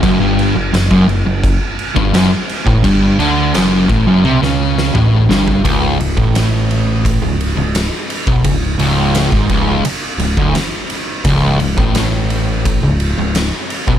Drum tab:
CC |x-x-x-x-x-x-x-x-|x-x-x-x---------|----------------|----------------|
RD |----------------|----------------|x-x-x-x-x-x-x-x-|x-x-x-x-x-x-x-x-|
SD |----o-------o---|----o----o-o--o-|----o-------o---|----o-------o---|
T1 |----------------|--------o-------|----------------|----------------|
T2 |----------------|------------o---|----------------|----------------|
FT |----------------|---------------o|----------------|----------------|
BD |o----o--o--o---o|o-----o---------|o--o----o------o|o----oo----o----|

CC |----------------|
RD |x-x-x-x-x-x-x-x-|
SD |----o-------o---|
T1 |----------------|
T2 |----------------|
FT |----------------|
BD |o--o----o------o|